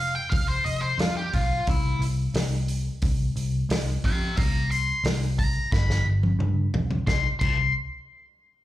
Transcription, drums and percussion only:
0.32 kick loud
0.32 open hi-hat medium
0.66 open hi-hat medium
0.99 snare loud
0.99 open hi-hat medium
1.33 kick medium
1.33 open hi-hat medium
1.67 kick loud
1.67 open hi-hat medium
2.02 open hi-hat medium
2.35 snare loud
2.35 open hi-hat medium
2.68 open hi-hat medium
3.02 kick loud
3.02 open hi-hat medium
3.37 open hi-hat medium
3.70 snare loud
3.70 open hi-hat medium
4.04 kick medium
4.04 open hi-hat medium
4.37 kick loud
4.37 open hi-hat medium
4.72 open hi-hat medium
5.05 snare loud
5.05 open hi-hat medium
5.39 kick medium
5.39 open hi-hat medium
5.72 kick loud
5.72 snare medium
5.90 snare medium
6.23 high tom medium
6.40 mid tom medium
6.74 floor tom medium
6.91 floor tom medium
7.07 kick loud
7.07 snare medium
7.41 kick loud
7.41 crash medium

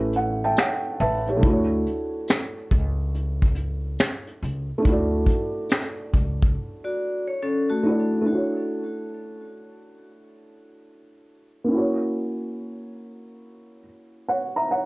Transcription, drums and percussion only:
0.13 closed hi-hat medium
0.57 finger snap medium
0.57 snare loud
0.57 closed hi-hat medium
0.57 tambourine medium
1.02 open hi-hat soft
1.27 closed hi-hat soft
1.43 kick loud
1.43 closed hi-hat medium
1.87 closed hi-hat medium
2.28 finger snap medium
2.28 snare loud
2.28 closed hi-hat medium
2.28 tambourine medium
2.71 kick medium
2.71 closed hi-hat medium
3.15 closed hi-hat medium
3.42 kick medium
3.55 closed hi-hat medium
3.99 finger snap medium
3.99 snare loud
3.99 closed hi-hat medium
3.99 tambourine medium
4.27 closed hi-hat soft
4.44 closed hi-hat medium
4.85 kick loud
4.85 closed hi-hat medium
5.26 kick medium
5.26 closed hi-hat medium
5.70 finger snap medium
5.70 snare loud
5.70 closed hi-hat medium
5.70 tambourine medium
6.14 kick medium
6.14 closed hi-hat medium
6.43 kick loud

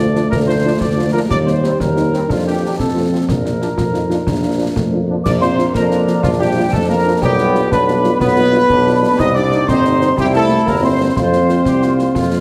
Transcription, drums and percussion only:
0.16 snare soft
0.32 concert bass drum medium
0.32 snare medium
0.81 concert bass drum medium
0.81 snare medium
1.30 concert bass drum medium
1.30 snare medium
1.30 crash soft
1.47 snare soft
1.64 snare medium
1.80 concert bass drum medium
1.80 snare medium
1.97 snare soft
2.14 snare soft
2.30 concert bass drum medium
2.30 snare medium
2.79 concert bass drum medium
2.79 snare soft
3.29 concert bass drum medium
3.29 snare medium
3.46 snare soft
3.62 snare soft
3.78 concert bass drum medium
3.78 snare medium
3.94 snare soft
4.11 snare soft
4.27 concert bass drum medium
4.27 snare medium
4.76 concert bass drum medium
4.76 snare medium
5.26 concert bass drum medium
5.26 snare medium
5.26 crash soft
5.42 snare medium
5.59 snare medium
5.74 concert bass drum medium
5.74 snare medium
5.91 snare medium
6.07 snare medium
6.23 concert bass drum medium
6.23 snare medium
6.73 concert bass drum medium
6.73 snare medium
7.22 concert bass drum medium
7.22 snare medium
7.38 snare medium
7.55 snare medium
7.72 concert bass drum medium
7.72 snare medium
7.88 snare medium
8.04 snare medium
8.20 concert bass drum medium
8.20 snare medium
8.69 concert bass drum medium
8.69 snare medium
9.19 concert bass drum medium
9.19 snare medium
9.19 crash soft
9.36 snare medium
9.52 snare medium
9.68 concert bass drum medium
9.68 snare medium
9.84 snare medium
10.01 snare medium
10.17 concert bass drum medium
10.17 snare medium
10.67 concert bass drum medium
10.67 snare medium
11.16 concert bass drum medium
11.16 snare medium
11.33 snare medium
11.49 snare medium
11.65 concert bass drum medium
11.65 snare medium
11.82 snare medium
11.99 snare medium
12.15 concert bass drum medium
12.15 snare medium

